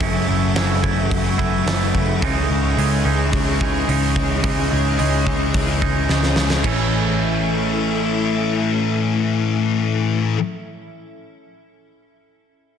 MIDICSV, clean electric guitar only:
0, 0, Header, 1, 2, 480
1, 0, Start_track
1, 0, Tempo, 553506
1, 1, Time_signature, 4, 2, 24, 8
1, 11083, End_track
2, 0, Start_track
2, 0, Title_t, "Clean electric guitar"
2, 0, Program_c, 0, 27
2, 6, Note_on_c, 0, 42, 84
2, 9, Note_on_c, 0, 49, 80
2, 10, Note_on_c, 0, 52, 89
2, 19, Note_on_c, 0, 64, 89
2, 20, Note_on_c, 0, 57, 87
2, 241, Note_off_c, 0, 57, 0
2, 242, Note_off_c, 0, 64, 0
2, 246, Note_on_c, 0, 64, 66
2, 251, Note_on_c, 0, 57, 62
2, 255, Note_off_c, 0, 52, 0
2, 258, Note_on_c, 0, 52, 54
2, 475, Note_off_c, 0, 49, 0
2, 484, Note_off_c, 0, 42, 0
2, 486, Note_on_c, 0, 49, 75
2, 488, Note_off_c, 0, 52, 0
2, 488, Note_off_c, 0, 57, 0
2, 492, Note_on_c, 0, 52, 77
2, 497, Note_off_c, 0, 64, 0
2, 498, Note_on_c, 0, 57, 70
2, 500, Note_on_c, 0, 64, 73
2, 715, Note_off_c, 0, 57, 0
2, 715, Note_off_c, 0, 64, 0
2, 718, Note_on_c, 0, 64, 73
2, 726, Note_on_c, 0, 57, 57
2, 729, Note_off_c, 0, 52, 0
2, 733, Note_on_c, 0, 52, 56
2, 964, Note_off_c, 0, 49, 0
2, 1196, Note_off_c, 0, 64, 0
2, 1199, Note_off_c, 0, 57, 0
2, 1200, Note_on_c, 0, 64, 77
2, 1210, Note_on_c, 0, 57, 74
2, 1213, Note_off_c, 0, 52, 0
2, 1217, Note_on_c, 0, 52, 57
2, 1438, Note_on_c, 0, 49, 69
2, 1440, Note_off_c, 0, 57, 0
2, 1441, Note_off_c, 0, 52, 0
2, 1444, Note_on_c, 0, 52, 74
2, 1450, Note_on_c, 0, 57, 71
2, 1454, Note_off_c, 0, 64, 0
2, 1458, Note_on_c, 0, 64, 74
2, 1906, Note_off_c, 0, 49, 0
2, 1912, Note_off_c, 0, 57, 0
2, 1931, Note_on_c, 0, 49, 81
2, 1934, Note_off_c, 0, 52, 0
2, 1937, Note_on_c, 0, 52, 79
2, 1940, Note_on_c, 0, 56, 89
2, 1944, Note_off_c, 0, 64, 0
2, 1948, Note_on_c, 0, 63, 94
2, 2169, Note_off_c, 0, 63, 0
2, 2173, Note_on_c, 0, 63, 63
2, 2179, Note_off_c, 0, 56, 0
2, 2183, Note_on_c, 0, 56, 55
2, 2184, Note_off_c, 0, 52, 0
2, 2188, Note_on_c, 0, 52, 55
2, 2401, Note_off_c, 0, 49, 0
2, 2405, Note_on_c, 0, 49, 67
2, 2407, Note_off_c, 0, 52, 0
2, 2410, Note_on_c, 0, 52, 79
2, 2413, Note_off_c, 0, 56, 0
2, 2417, Note_on_c, 0, 56, 83
2, 2419, Note_off_c, 0, 63, 0
2, 2423, Note_on_c, 0, 63, 75
2, 2642, Note_off_c, 0, 63, 0
2, 2646, Note_on_c, 0, 63, 64
2, 2649, Note_off_c, 0, 56, 0
2, 2653, Note_on_c, 0, 56, 62
2, 2661, Note_off_c, 0, 52, 0
2, 2664, Note_on_c, 0, 52, 54
2, 3119, Note_off_c, 0, 63, 0
2, 3128, Note_off_c, 0, 56, 0
2, 3129, Note_on_c, 0, 63, 69
2, 3138, Note_on_c, 0, 56, 60
2, 3139, Note_off_c, 0, 52, 0
2, 3142, Note_on_c, 0, 52, 62
2, 3155, Note_off_c, 0, 49, 0
2, 3367, Note_off_c, 0, 56, 0
2, 3367, Note_on_c, 0, 49, 66
2, 3372, Note_off_c, 0, 52, 0
2, 3372, Note_off_c, 0, 63, 0
2, 3375, Note_on_c, 0, 52, 63
2, 3378, Note_on_c, 0, 56, 68
2, 3383, Note_on_c, 0, 63, 69
2, 3831, Note_off_c, 0, 49, 0
2, 3836, Note_off_c, 0, 52, 0
2, 3841, Note_on_c, 0, 49, 77
2, 3842, Note_off_c, 0, 56, 0
2, 3847, Note_on_c, 0, 52, 82
2, 3848, Note_off_c, 0, 63, 0
2, 3852, Note_on_c, 0, 56, 89
2, 3859, Note_on_c, 0, 63, 85
2, 4066, Note_off_c, 0, 63, 0
2, 4075, Note_off_c, 0, 56, 0
2, 4076, Note_on_c, 0, 63, 68
2, 4084, Note_off_c, 0, 52, 0
2, 4086, Note_on_c, 0, 56, 63
2, 4095, Note_on_c, 0, 52, 61
2, 4306, Note_off_c, 0, 49, 0
2, 4314, Note_off_c, 0, 52, 0
2, 4315, Note_off_c, 0, 56, 0
2, 4316, Note_on_c, 0, 49, 63
2, 4324, Note_off_c, 0, 63, 0
2, 4324, Note_on_c, 0, 52, 66
2, 4325, Note_on_c, 0, 56, 78
2, 4335, Note_on_c, 0, 63, 78
2, 4546, Note_off_c, 0, 63, 0
2, 4556, Note_off_c, 0, 56, 0
2, 4556, Note_on_c, 0, 63, 64
2, 4566, Note_off_c, 0, 52, 0
2, 4566, Note_on_c, 0, 56, 62
2, 4577, Note_on_c, 0, 52, 53
2, 4800, Note_off_c, 0, 49, 0
2, 5036, Note_off_c, 0, 63, 0
2, 5047, Note_off_c, 0, 56, 0
2, 5047, Note_on_c, 0, 63, 72
2, 5052, Note_off_c, 0, 52, 0
2, 5057, Note_on_c, 0, 56, 64
2, 5062, Note_on_c, 0, 52, 60
2, 5282, Note_off_c, 0, 52, 0
2, 5287, Note_on_c, 0, 49, 67
2, 5292, Note_off_c, 0, 56, 0
2, 5292, Note_on_c, 0, 52, 64
2, 5295, Note_off_c, 0, 63, 0
2, 5303, Note_on_c, 0, 56, 66
2, 5305, Note_on_c, 0, 63, 69
2, 5751, Note_off_c, 0, 49, 0
2, 5754, Note_off_c, 0, 52, 0
2, 5754, Note_on_c, 0, 45, 81
2, 5759, Note_off_c, 0, 56, 0
2, 5760, Note_off_c, 0, 63, 0
2, 5764, Note_on_c, 0, 52, 76
2, 5772, Note_on_c, 0, 57, 81
2, 5779, Note_on_c, 0, 61, 90
2, 5788, Note_on_c, 0, 64, 90
2, 8978, Note_off_c, 0, 45, 0
2, 8983, Note_off_c, 0, 52, 0
2, 8988, Note_off_c, 0, 57, 0
2, 8991, Note_off_c, 0, 61, 0
2, 8996, Note_off_c, 0, 64, 0
2, 11083, End_track
0, 0, End_of_file